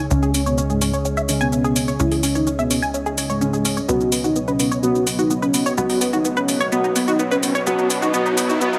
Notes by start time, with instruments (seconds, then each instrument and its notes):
Already playing: synth drone C#3 C#4, analog synth pad C#4 G#4 C#5 D#5
0.11 analog synth bass C#2, analog polysynth C#3 G#3 C#4, soft synth lead C#4, synth arpeggio sound C#4, shaker
0.23 synth arpeggio sound G#4, shaker
0.34 synth arpeggio sound C#4, open hi-hat, shaker
0.46 soft synth lead B3, synth arpeggio sound C#5, shaker
0.58 synth arpeggio sound C#4, shaker
0.70 soft synth lead G#3, synth arpeggio sound G#4, shaker
0.81 synth arpeggio sound C#4, open hi-hat, shaker
0.94 synth arpeggio sound C#5, shaker
1.05 synth arpeggio sound C#4, shaker
1.17 synth arpeggio sound E5, shaker
1.29 analog polysynth C#3 G#3 C#4, synth arpeggio sound C#4, open hi-hat, shaker
1.41 soft synth lead B3, synth arpeggio sound G#5, shaker
1.52 analog polysynth C#3 G#3 C#4, synth arpeggio sound C#4, shaker
1.64 synth arpeggio sound G#4, shaker
1.76 synth arpeggio sound C#4, open hi-hat, shaker
1.88 synth arpeggio sound C#5, shaker
2.00 analog synth bass C#2, analog polysynth C#3 G#3 C#4, synth arpeggio sound C#4, soft synth lead E4, shaker
2.12 synth arpeggio sound G#4, open hi-hat, shaker
2.23 synth arpeggio sound C#4, open hi-hat, shaker
2.35 soft synth lead D#4, synth arpeggio sound C#5, shaker
2.47 synth arpeggio sound C#4, shaker
2.59 soft synth lead B3, synth arpeggio sound E5, shaker
2.71 synth arpeggio sound C#4, open hi-hat, shaker
2.82 synth arpeggio sound G#5, shaker
2.94 synth arpeggio sound C#4, shaker
3.06 synth arpeggio sound G#4, shaker
3.18 synth arpeggio sound C#4, open hi-hat, shaker
3.30 soft synth lead G#3, synth arpeggio sound C#5, shaker
3.41 analog polysynth C#3 G#3 C#4, synth arpeggio sound C#4, shaker
3.53 synth arpeggio sound G#4, shaker
3.65 synth arpeggio sound C#4, open hi-hat, shaker
3.77 synth arpeggio sound C#5, shaker
3.88 analog synth bass C#2, analog polysynth B2 F#3 B3, analog synth pad B3 F#4 C#5, synth arpeggio sound B3, soft synth lead F#4, riser, shaker
4.01 synth arpeggio sound D#4, shaker
4.12 synth arpeggio sound B3, open hi-hat, shaker
4.24 soft synth lead D#4, synth arpeggio sound F#4, shaker
4.36 synth arpeggio sound B3, shaker
4.48 soft synth lead C#4, synth arpeggio sound B4, shaker
4.59 synth arpeggio sound B3, open hi-hat, shaker
4.71 synth arpeggio sound C#5, shaker
4.83 analog polysynth B2 F#3 B3, synth arpeggio sound B3, soft synth lead F#4, shaker
4.95 synth arpeggio sound D#4, shaker
5.07 synth arpeggio sound B3, open hi-hat, shaker
5.18 soft synth lead D#4, synth arpeggio sound F#4, shaker
5.30 synth arpeggio sound B3, shaker
5.42 soft synth lead C#4, synth arpeggio sound B4, shaker
5.54 synth arpeggio sound B3, open hi-hat, shaker
5.66 synth arpeggio sound C#5, shaker
5.77 analog synth bass C#2, analog polysynth B2 F#3 B3, synth arpeggio sound B3, soft synth lead F#4, shaker
5.90 synth arpeggio sound D#4, open hi-hat, shaker
6.01 synth arpeggio sound B3, open hi-hat, shaker
6.13 soft synth lead D#4, synth arpeggio sound F#4, shaker
6.25 synth arpeggio sound B3, shaker
6.37 soft synth lead C#4, synth arpeggio sound B4, shaker
6.48 synth arpeggio sound B3, open hi-hat, shaker
6.60 synth arpeggio sound C#5, shaker
6.72 analog polysynth B2 F#3 B3, synth arpeggio sound B3, soft synth lead F#4, shaker
6.84 synth arpeggio sound D#4, shaker
6.96 synth arpeggio sound B3, open hi-hat, shaker
7.08 soft synth lead D#4, synth arpeggio sound F#4, shaker
7.19 synth arpeggio sound B3, shaker
7.31 soft synth lead C#4, synth arpeggio sound B4, shaker
7.43 synth arpeggio sound B3, open hi-hat, shaker
7.55 synth arpeggio sound C#5, shaker
7.66 analog synth bass C#2, analog polysynth B2 F#3 B3, synth arpeggio sound B3, soft synth lead F#4, shaker
7.79 synth arpeggio sound D#4, shaker
7.90 synth arpeggio sound B3, open hi-hat, shaker
8.02 soft synth lead D#4, synth arpeggio sound F#4, shaker
8.14 analog polysynth B2 F#3 B3, synth arpeggio sound B3, soft synth lead F#4, shaker
8.26 synth arpeggio sound D#4, shaker
8.37 synth arpeggio sound B3, open hi-hat, shaker
8.49 soft synth lead D#4, synth arpeggio sound F#4, shaker
8.61 analog polysynth B2 F#3 B3, synth arpeggio sound B3, soft synth lead F#4, shaker
8.73 synth arpeggio sound D#4, shaker